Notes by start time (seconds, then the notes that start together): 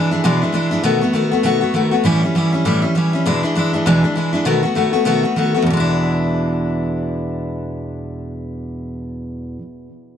Already playing: E3 G#3 D4 E4
0.11 E3 G#3 D4 E4
0.24 E2 B2 E3 G#3 D4 E4
0.41 E3 G#3 D4 E4
0.53 E3 G#3 D4 E4
0.71 E3 G#3 D4 E4
0.83 B2 D#3 A3 B3 F#4
1.01 A3 B3 F#4
1.13 D#3 A3 B3 F#4
1.31 A3 B3 F#4
1.43 B2 D#3 A3 B3 F#4
1.61 A3 B3 F#4
1.74 D#3 A3 B3 F#4
1.91 A3 B3 F#4
2.04 A2 E3 G3 C#4 E4
2.23 G3 C#4 E4
2.35 E3 G3 C#4 E4
2.52 G3 C#4 E4
2.65 A2 E3 G3 C#4 E4
2.82 G3 C#4 E4
2.95 E3 G3 C#4 E4
3.13 G3 C#4 E4
3.25 E2 B2 E3 G#3 D4 E4
3.43 E3 G#3 D4 E4
3.55 E3 G#3 D4 E4
3.73 E3 G#3 D4 E4
3.86 E2 B2 E3 G#3 D4 E4
4.03 E3 G#3 D4 E4
4.16 E3 G#3 D4 E4
4.33 E3 G#3 D4 E4
4.45 B2 D#3 A3 B3 F#4
4.63 A3 B3 F#4
4.75 D#3 A3 B3 F#4
4.93 A3 B3 F#4
5.05 B2 D#3 A3 B3 F#4
5.23 A3 B3 F#4
5.36 D#3 A3 B3 F#4
5.54 A3 B3 F#4
5.62 E2
5.66 B2 E3
5.73 G#3 D4
5.80 E4